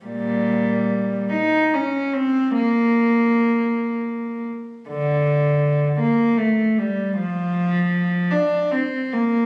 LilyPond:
\new Staff \with { instrumentName = "Cello" } { \time 3/4 \key bes \dorian \tempo 4 = 77 <bes, g>4. ees'8 des'8 c'8 | bes2~ bes8 r8 | \key f \major d4. bes8 a8 g8 | f4. d'8 c'8 bes8 | }